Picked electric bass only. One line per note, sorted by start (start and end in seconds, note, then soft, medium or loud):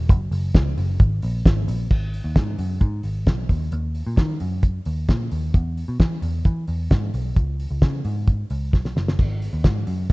0.09 0.29 F#1 loud
0.31 0.51 F#1 loud
0.55 0.74 C#2 loud
0.78 0.97 F#1 medium
1.00 1.19 G#1 medium
1.23 1.42 A#1 medium
1.45 1.65 G#1 medium
1.68 1.87 A#1 medium
1.91 2.20 G#1 medium
2.24 2.34 D#2 medium
2.36 2.55 G#2 medium
2.58 2.78 F#2 medium
2.81 3.00 G#2 loud
3.04 3.27 G#1 medium
3.27 3.46 B1 medium
3.49 3.69 D#2 medium
3.72 4.01 D#2 medium
4.07 4.16 A#2 medium
4.18 4.37 D#3 loud
4.41 4.79 F#2 medium
4.86 5.05 D#2 medium
5.09 5.28 A#2 medium
5.32 5.51 D#2 medium
5.54 5.83 E2 medium
5.88 5.98 B2 medium
6.00 6.19 E3 medium
6.22 6.42 E2 medium
6.45 6.65 E3 medium
6.68 6.87 E2 medium
6.91 7.10 G#2 medium
7.14 7.33 B1 medium
7.36 7.65 C#2 loud
7.71 7.80 C#2 medium
7.82 8.01 C#3 medium
8.05 8.43 G#2 medium
8.51 8.73 C#2 medium
8.73 8.93 B1 medium
8.96 9.15 F#1 medium
9.19 9.48 G#1 medium
9.53 9.63 D#2 medium
9.64 9.83 G#2 medium
9.87 10.06 F#2 medium